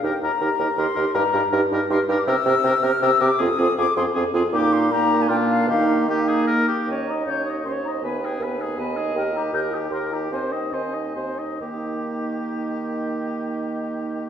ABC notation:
X:1
M:3/4
L:1/16
Q:1/4=157
K:Eb
V:1 name="Flute"
g2 b6 c'4 | b4 z4 c'3 d' | =e'6 f'2 e'2 d'2 | e'4 d'2 c'2 z4 |
d'2 c'2 b3 a g2 f2 | f4 e6 z2 | g2 b2 g'2 e'2 c'2 b2 | a2 g2 a6 z2 |
g2 b2 g'2 e'2 c'2 b2 | a2 g2 a6 z2 | e12- | e12 |]
V:2 name="Oboe"
B2 B2 B2 B2 B2 B2 | B2 B2 B2 B2 B2 B2 | B2 B2 B2 B2 B2 B2 | A2 A2 A2 A2 A2 A2 |
G4 G4 F4 | G4 G2 A2 B2 G2 | _d2 e2 d2 e2 d2 e2 | _c2 A2 c2 A2 c2 A2 |
B2 G2 B2 G2 B2 G2 | c2 e2 c2 e2 c2 e2 | G12- | G12 |]
V:3 name="Clarinet"
G2 G2 G2 G2 G2 G2 | G2 G2 G2 G2 G2 G2 | G2 G2 G2 G2 G2 G2 | F2 F2 F2 F2 F2 F2 |
E4 E4 D4 | E4 E6 z2 | e4 _d4 c4 | _c8 e4- |
e4 B8 | c4 e4 c2 z2 | E12- | E12 |]
V:4 name="French horn"
E2 E2 E2 E2 E2 E2 | E2 E2 E2 E2 E2 E2 | C2 C2 C2 C2 C2 C2 | C2 C2 C2 C2 C2 C2 |
B,4 B,4 B,4 | B,4 B,6 z2 | _D2 E2 D2 E2 D2 E2 | _C2 E2 C2 E2 C2 E2 |
G2 E2 G2 E2 G2 E2 | C2 E2 C2 E2 C2 E2 | B,12- | B,12 |]
V:5 name="Bassoon" clef=bass
E,,2 E,,2 E,,2 E,,2 E,,2 E,,2 | G,,2 G,,2 G,,2 G,,2 G,,2 G,,2 | C,2 C,2 C,2 C,2 C,2 C,2 | F,,2 F,,2 F,,2 F,,2 F,,2 F,,2 |
B,,8 B,,4 | E,8- E,2 z2 | E,,4 E,,4 E,,4 | E,,4 E,,4 E,,4 |
E,,4 E,,4 E,,4 | E,,4 E,,4 E,,4 | E,12- | E,12 |]